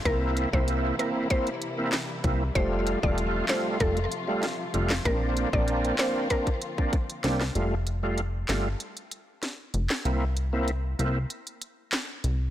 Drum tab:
HH |x-x-x-x-xxx-x-x-|x-x-x-x-xxx-x-x-|x-x-xxx-xxx-xxx-|x-x-x-x-xxx-x-x-|
CP |------------x---|------x--------x|------x---------|------x--------x|
SD |------------o---|------o-----o--o|------o-------oo|------o-----o--o|
BD |o--o----o-----o-|o--o----o-------|o--o----oo-oo---|----------------|

HH |x-x-x-x-xxx-x-x-|
CP |------------x---|
SD |------------o---|
BD |----------------|